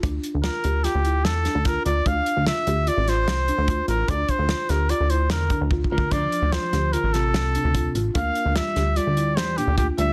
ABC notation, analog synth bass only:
X:1
M:5/4
L:1/16
Q:1/4=148
K:Dm
V:1 name="Analog synth bass" clef=bass
D,,2 z D,,2 z D,,3 D,,3 E,,3 D,,3 D,,2 | D,,2 z D,,2 z D,,3 A,,,3 C,,3 D,,3 A,,,2 | D,,2 z D,,2 z D,,3 D,,3 E,,3 D,,3 D,,2 | D,,2 z D,,2 z D,,3 A,,,3 C,,3 D,,3 A,,,2 |
D,,2 z D,,2 z D,,3 D,,3 E,,3 D,,3 D,,2 |]